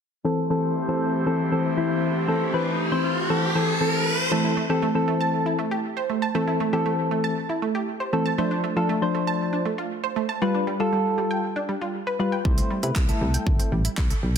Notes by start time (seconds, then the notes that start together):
0.24 E3 A3 C4 G4 A4 C5, riser
0.50 E3 C4 A4
0.88 E3 C4 A4
1.26 E3 C4 A4
1.52 E3 C4 A4
1.77 E3 C4 E4
2.28 E3 C4 A4
2.53 E3 C4 B4
2.92 E3 C4 C5
3.30 E3 C4 A4
3.55 E3 C4 A4
3.81 E3 C4 A4
4.31 E3 A3 C4 A4
4.44 E4
4.57 A3
4.69 E3 C4 G4 A4
4.82 A3
4.95 E3 C4 A4
5.08 A3
5.21 A5
5.46 E4
5.59 A3
5.71 G4
5.97 C5
6.10 A3
6.22 A5
6.35 E3 A3 C4 A4
6.48 E4
6.60 A3
6.73 E3 C4 G4 A4
6.86 A3
7.11 A3
7.24 A5
7.49 E4
7.62 A3
7.75 G4
8.00 C5
8.13 E3 A3 C4 A4
8.26 A5
8.38 F3 A3 D4 C5
8.51 D4
8.64 A3
8.76 F3 D4 F4 A4
8.89 A3
9.02 F3 D4 C5
9.15 A3
9.27 A5
9.53 D4
9.65 A3
9.78 F4
10.04 C5
10.16 A3
10.29 A5
10.42 G3 F4 B4
10.54 D4
10.67 G3
10.80 G3 F4 A4
10.93 G3
11.18 G3
11.31 G5
11.56 D4
11.69 G3
11.81 F4
12.07 B4
12.19 G3 F4 B4
12.32 G5
12.45 C2 G3 A3 E4 C5, kick
12.58 C4, closed hi-hat
12.71 G3
12.83 C3 A3 E4 B4, closed hi-hat
12.96 C2 G3, kick, clap
13.08 A3 E4 A4, closed hi-hat
13.21 C2 G3
13.34 G5, closed hi-hat
13.47 G1, kick
13.59 C4, closed hi-hat
13.72 A1 G3
13.85 E4, closed hi-hat
13.97 C2, kick, clap
14.10 A4, closed hi-hat
14.23 B1 G3